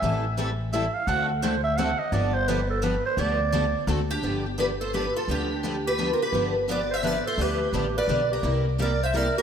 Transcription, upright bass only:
X:1
M:3/4
L:1/8
Q:"Swing" 1/4=171
K:Gmix
V:1 name="Upright bass" clef=bass
A,,,6 | D,,6 | G,,,6 | D,,4 D,,2 |
G,,,6 | D,,6 | G,,,6 | D,,2 A,,,2 B,,,2 |
C,,6 |]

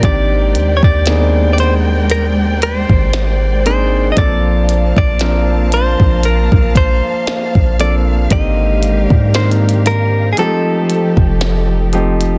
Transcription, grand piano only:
X:1
M:4/4
L:1/8
Q:"Swing 16ths" 1/4=58
K:Bb
V:1 name="Grand piano"
[E,B,CDG] z [E,B,_C=CD_A]3 z2 [E,B,CDA] | [F,B,CDA] z [F,B,CDB]3 z2 [F,B,CDA] | [D,E,B,CG] z [E,B,CDB]2 [F,_A,=A,CEG]2 z [F,A,CEG] |]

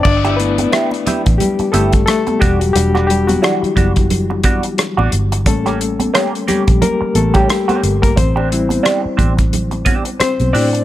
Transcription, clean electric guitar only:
X:1
M:4/4
L:1/16
Q:"Swing 16ths" 1/4=89
K:G
V:1 name="Clean electric guitar"
z [B,EG] z2 [B,EG] z [B,EG] z3 [B,EG] z3 [G,DF] z | z [G,DF] z2 [G,DF] z [G,DF] z3 [G,DF] z2 [G,DF] z2 | z [_B,^CG] z2 [B,CG] z [B,CG] z4 [B,CG] z [B,CG] z2 | z [CDG] z2 [CDG] z [CDG] z3 [CDG] z3 [CDG] z |]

